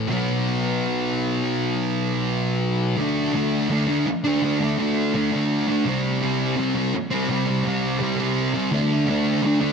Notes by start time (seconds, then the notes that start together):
Already playing: A3
0.08 B2 F#3 B3
2.97 D3 A3 D4
3.33 D3 A3 D4
3.69 D3 A3 D4
3.88 A3 D4
4.06 muted distorted electric guitar stroke
4.24 A3 D4
4.41 D3 A3 D4
4.59 A3 D4
4.78 D3 A3 D4
5.13 D3 A3 D4
5.31 A3 D4
5.67 A3 D4
5.85 C3 G3 C4
6.21 C3 G3 C4
6.56 C3 G3 C4
6.74 G3 C4
6.94 muted distorted electric guitar stroke
7.11 G3 C4
7.29 C3 G3 C4
7.47 G3 C4
7.64 C3 G3 C4
7.99 C3 G3 C4
8.16 G3 C4
8.53 G3 C4
8.71 D3 A3 D4
9.07 D3 A3 D4
9.42 D3 A3 D4
9.60 A3 D4